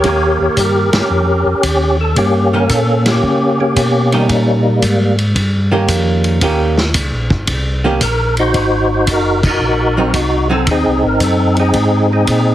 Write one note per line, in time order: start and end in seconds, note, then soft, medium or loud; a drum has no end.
0.00 0.38 D#2 medium
0.00 0.90 G4 medium
0.00 0.59 A#4 medium
0.00 0.38 C#5 loud
0.00 kick soft
0.00 ride medium
0.04 0.86 D#3 medium
0.04 0.87 A#3 medium
0.04 0.87 C#4 medium
0.04 0.87 G4 medium
0.40 0.49 D#2 soft
0.40 0.59 C#5 medium
0.57 0.91 G2 medium
0.57 0.96 A#4 medium
0.57 kick soft
0.57 hi-hat pedal medium
0.57 ride medium
0.93 1.02 G2 soft
0.93 1.97 C#4 medium
0.93 1.97 G4 medium
0.93 snare medium
0.93 ride medium
0.97 1.62 A#4 medium
1.10 1.44 F2 medium
1.45 1.54 F2 soft
1.63 2.15 D#2 medium
1.63 kick soft
1.63 hi-hat pedal medium
1.63 ride medium
2.01 2.16 A4 medium
2.16 2.68 G2 medium
2.16 3.07 A#3 medium
2.16 3.07 C#4 medium
2.16 2.54 G4 medium
2.16 kick soft
2.16 ride medium
2.53 2.69 D#3 medium
2.53 2.69 A#3 medium
2.53 2.69 C#4 medium
2.53 2.69 G4 medium
2.53 2.71 A#4 medium
2.69 3.21 A#2 medium
2.69 3.04 A4 medium
2.69 kick soft
2.69 hi-hat pedal medium
2.69 ride medium
3.06 3.59 A#3 medium
3.06 3.60 C#4 medium
3.06 3.59 G4 medium
3.06 snare medium
3.06 ride medium
3.23 3.75 C#3 medium
3.23 kick soft
3.60 4.13 A#3 medium
3.60 4.63 C#4 medium
3.60 4.15 G4 medium
3.76 4.28 B2 medium
3.76 kick soft
3.76 hi-hat pedal medium
3.76 ride medium
4.12 4.28 D#3 medium
4.12 5.16 G3 medium
4.12 4.29 A#3 medium
4.12 5.16 A#3 soft
4.12 4.29 C#4 medium
4.12 4.80 D#4 medium
4.12 4.29 G4 medium
4.12 ride soft
4.29 4.81 A#2 medium
4.29 kick soft
4.29 ride medium
4.82 5.34 G#2 medium
4.82 kick soft
4.82 hi-hat pedal medium
4.82 ride medium
5.18 ride soft
5.35 5.87 G2 medium
5.35 kick soft
5.35 ride medium
5.72 6.39 D#3 medium
5.72 6.39 A#3 medium
5.72 6.39 C#4 medium
5.72 6.39 G4 medium
5.88 6.40 F2 medium
5.88 kick soft
5.88 hi-hat pedal medium
5.88 ride medium
6.24 ride soft
6.41 6.93 D#2 medium
6.41 6.75 D#3 medium
6.41 6.75 A#3 medium
6.41 6.75 C#4 medium
6.41 6.75 G4 medium
6.41 kick soft
6.41 ride medium
6.77 snare medium
6.94 7.12 C#2 medium
6.94 kick soft
6.94 hi-hat pedal medium
6.94 ride medium
7.12 7.31 A#1 medium
7.30 7.47 G1 medium
7.30 kick medium
7.47 8.00 C2 medium
7.47 kick soft
7.47 ride medium
7.84 8.00 D#3 medium
7.84 8.00 A#3 medium
7.84 8.00 C#4 medium
7.84 8.01 G4 medium
8.01 8.53 A#1 medium
8.01 8.36 A#4 medium
8.01 kick soft
8.01 hi-hat pedal medium
8.01 ride medium
8.37 9.41 D#4 medium
8.37 9.41 F#4 medium
8.37 8.89 C5 loud
8.37 ride soft
8.54 9.06 G#1 medium
8.54 kick soft
8.54 ride medium
8.94 9.09 C5 medium
9.07 9.59 F#1 medium
9.07 kick soft
9.07 hi-hat pedal medium
9.07 ride medium
9.12 9.44 A#4 medium
9.43 10.48 D#4 medium
9.43 10.48 F#4 medium
9.43 kick medium
9.43 crash medium
9.48 10.13 A#4 medium
9.61 10.13 A#1 medium
9.97 10.13 F#3 medium
9.97 10.13 C4 medium
9.97 10.13 D#4 medium
10.14 10.66 C2 medium
10.14 kick soft
10.14 hi-hat pedal medium
10.14 ride medium
10.50 10.66 F#3 medium
10.50 10.66 C4 medium
10.50 10.66 D#4 medium
10.50 10.69 A4 medium
10.67 10.84 D#2 medium
10.67 kick soft
10.67 ride medium
10.71 11.58 C4 medium
10.71 11.59 D#4 medium
10.71 11.03 G#4 loud
10.86 11.03 C2 medium
11.03 11.20 G#1 medium
11.03 11.22 A#4 medium
11.20 11.72 F#2 medium
11.20 11.56 A4 loud
11.20 kick soft
11.20 hi-hat pedal medium
11.20 ride medium
11.57 12.11 C4 medium
11.57 12.12 D#4 medium
11.57 12.08 G#4 loud
11.57 ride soft
11.74 12.26 G#2 medium
11.74 kick soft
11.74 ride medium
12.12 12.55 C4 medium
12.12 12.55 D#4 medium
12.12 12.55 G#4 medium
12.27 12.55 A#2 medium
12.27 kick soft
12.27 hi-hat pedal medium
12.27 ride medium